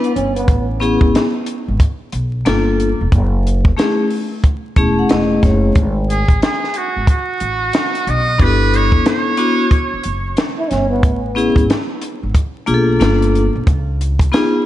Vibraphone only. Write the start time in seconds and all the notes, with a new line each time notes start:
0.80 B3 C#4 E4 G#4
2.45 A#3 D4 F4 A4
3.77 A3 C#4 E4 G#4
4.77 A3 C#4 E4 G#4 A5
4.99 F#5
5.10 D#5
5.43 C#5
8.38 B3 D4 E4 G4
8.46 A4
9.37 B3 D4 E4 F#4
11.35 B3 C#4 E4 G#4
12.66 A#3 D4 F4 G#4
12.74 A4
13.00 A#3 D4 F4 A4
14.32 B3 D#4 F4 G#4